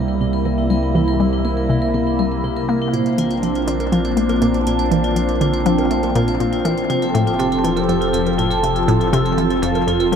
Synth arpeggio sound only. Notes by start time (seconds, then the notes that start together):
0.21 C3
0.45 E3
0.70 G3
0.95 E3
1.20 G3
1.45 A#3
1.69 C3
1.94 C3
2.19 G3
2.44 C3
2.69 A#3
2.93 A#2
3.18 E3
3.43 F3
3.68 D3
3.92 F3
4.17 A3
4.42 A#2
4.67 A#2
4.91 E3
5.16 F3
5.41 D3
5.66 F3
5.90 A3
6.15 A#2
6.40 A#2
6.65 E3
6.90 C3
7.14 A2
7.39 C3
7.64 E3
7.88 F2
8.13 F2
8.38 A2
8.63 C3
8.88 A2
9.13 C3
9.37 E3
9.62 F2
9.87 F2
10.12 F3